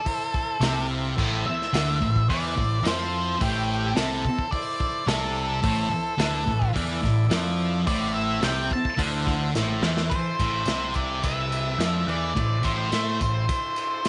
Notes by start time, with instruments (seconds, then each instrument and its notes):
Already playing: lead electric guitar A4
0.05 transistor combo organ E4 A4 C5, kick, open hi-hat
0.32 transistor combo organ A5, kick
0.60 picked electric bass C2, distorted electric guitar C3, transistor combo organ E4 A4 C5 G5, snare, open hi-hat, tambourine
0.87 transistor combo organ F5
1.14 distorted electric guitar A2, transistor combo organ E4 A4 C5
1.18 picked electric bass A1, kick, crash
1.46 lead electric guitar E5, muted picked electric bass stroke, muted distorted electric guitar stroke
1.62 snare
1.68 transistor combo organ E4 A4 C5
1.73 picked electric bass D2, distorted electric guitar D3, snare, open hi-hat, tambourine
2.01 picked electric bass A1, distorted electric guitar A2, kick
2.16 kick
2.26 distorted electric guitar E3, transistor combo organ E4 A4 C5
2.30 picked electric bass E2, lead electric guitar D5, kick, open hi-hat
2.57 picked electric bass A1, distorted electric guitar A2, kick
2.83 picked electric bass F2, distorted electric guitar F3, transistor combo organ E4 A4 C5, snare, open hi-hat, tambourine
2.87 lead electric guitar C5
3.40 picked electric bass A1, distorted electric guitar A2, transistor combo organ E4 A4 C5, lead electric guitar G4, kick, open hi-hat
3.95 picked electric bass C2, distorted electric guitar C3, transistor combo organ E4 A4 C5, lead electric guitar A4, snare, open hi-hat, tambourine
4.25 kick
4.39 kick
4.51 transistor combo organ E4 A4 C5, lead electric guitar D5, kick, open hi-hat
4.80 kick
5.06 picked electric bass C2, distorted electric guitar C3, transistor combo organ E4 A4 D5, lead electric guitar A4, snare, open hi-hat, tambourine
5.62 picked electric bass A1, distorted electric guitar A2, transistor combo organ E4 A4 C5, kick, open hi-hat
5.90 muted distorted electric guitar stroke, muted picked electric bass stroke
6.18 picked electric bass D2, distorted electric guitar D3, transistor combo organ E4 A4 B4, snare, open hi-hat, tambourine
6.46 picked electric bass A1, distorted electric guitar A2, kick
6.62 kick
6.73 picked electric bass E2, distorted electric guitar E3, transistor combo organ E4 A4 D5, kick, open hi-hat
7.02 picked electric bass A1, distorted electric guitar A2, kick, snare
7.27 distorted electric guitar F3, transistor combo organ E4 A4 D5
7.31 picked electric bass F2, snare, open hi-hat, tambourine
7.84 picked electric bass A1, distorted electric guitar A2, transistor combo organ E4 A4 C5, lead electric guitar D5, kick, open hi-hat
8.14 lead electric guitar E5
8.39 picked electric bass C2, distorted electric guitar C3, transistor combo organ E4 A4 C5, snare, open hi-hat, tambourine
8.44 lead electric guitar G5
8.71 lead electric guitar A5, kick
8.85 kick
8.96 picked electric bass D2, distorted electric guitar D3, transistor combo organ E4 A4 C5, kick, open hi-hat
9.27 kick, snare
9.55 picked electric bass A1, distorted electric guitar A2, transistor combo organ E4 A4 C5, snare, tambourine
9.82 picked electric bass E2, distorted electric guitar E3, snare
9.97 snare
10.10 transistor combo organ E4 A4 C5, lead electric guitar C5, kick, ride
10.39 picked electric bass A1, distorted electric guitar A2, kick, ride, tambourine
10.65 picked electric bass C2, distorted electric guitar C3, transistor combo organ E4 A4 C5, snare, ride, tambourine
10.94 lead electric guitar D5, kick, ride, tambourine
11.23 transistor combo organ E4 A4 B4, lead electric guitar E5, kick, ride, tambourine
11.52 ride, tambourine
11.78 picked electric bass F2, distorted electric guitar F3, transistor combo organ E4 A4 D5, snare, ride, tambourine
12.07 picked electric bass E2, distorted electric guitar E3, lead electric guitar D5, ride
12.35 picked electric bass A1, distorted electric guitar A2, transistor combo organ E4 A4, kick, ride
12.40 transistor combo organ C5
12.63 picked electric bass A1, distorted electric guitar A2, lead electric guitar C5, kick, ride, tambourine
12.91 picked electric bass A2, distorted electric guitar A3, transistor combo organ E4 A4 C5, snare, ride, tambourine
13.21 picked electric bass A1, distorted electric guitar A2, lead electric guitar C5, kick, ride, tambourine
13.47 transistor combo organ E4 A4 C5, kick, ride, tambourine
13.76 ride, tambourine
14.02 transistor combo organ E4 A4 C5, snare, ride, tambourine